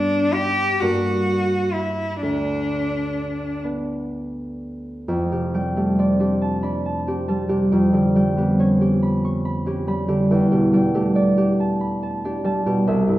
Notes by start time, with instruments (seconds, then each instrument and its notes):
Already playing: harp G2 B3 D4, cello D4
0.34 cello G4
0.80 harp G2 A#3 D4, cello F#4
1.73 cello E4
2.22 harp D2, cello D4
3.64 harp B3 D4
5.08 harp F2 G5
5.31 harp C3 G4
5.54 harp G3 G5
5.76 harp A3 G4
5.99 harp C4 D5
6.20 harp D4 G4
6.42 harp A5
6.63 harp D4 B5
6.86 harp A5
7.07 harp C4 G4
7.28 harp G3 A5
7.49 harp C3 G4
7.72 harp F2 G5
7.93 harp D3 G4
8.15 harp G3 G5
8.37 harp B3 G4
8.59 harp C#4 C#5
8.81 harp G4
9.03 harp B5
9.25 harp C#6
9.45 harp B5
9.66 harp C#4 G4
9.87 harp G3 B5
10.08 harp D3 G4
10.31 harp E2 G5
10.52 harp B2 G4
10.73 harp G3 G5
10.94 harp A3 G4
11.15 harp D4 D5
11.38 harp G4
11.60 harp A5
11.81 harp B5
12.03 harp A5
12.25 harp D4 G4
12.44 harp G3 A5
12.66 harp B2 G4
12.87 harp C2 E5
13.08 harp G2 E4